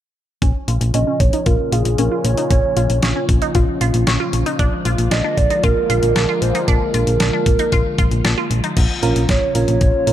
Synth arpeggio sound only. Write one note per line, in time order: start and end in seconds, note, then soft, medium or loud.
0.42 0.62 C#4 medium
0.68 0.88 F4 medium
0.94 1.04 C#4 medium
1.07 1.27 C#4 medium
1.33 1.43 D#4 medium
1.46 1.67 F4 medium
1.72 1.93 F4 medium
1.99 2.09 C#4 medium
2.11 2.32 F4 medium
2.38 2.48 D#4 medium
2.51 2.71 C#4 medium
2.77 2.97 F4 medium
3.03 3.13 C#4 medium
3.16 3.36 C#4 medium
3.42 3.52 D#4 medium
3.55 3.75 F4 medium
3.81 4.01 F4 medium
4.07 4.17 C#4 medium
4.20 4.40 F4 medium
4.46 4.56 D#4 medium
4.59 4.80 D4 medium
4.85 5.06 F4 medium
5.11 5.22 D4 medium
5.24 5.45 D4 medium
5.50 5.61 D#4 medium
5.64 5.84 F4 medium
5.90 6.10 F4 medium
6.16 6.26 D4 medium
6.29 6.49 F4 medium
6.55 6.65 D#4 medium
6.68 6.88 D4 loud
6.94 7.14 F4 medium
7.20 7.30 D4 medium
7.33 7.54 D4 medium
7.59 7.70 D#4 medium
7.72 7.93 F4 medium
7.99 8.19 F4 medium
8.25 8.35 D4 medium
8.38 8.58 F4 medium
8.64 8.74 D#4 medium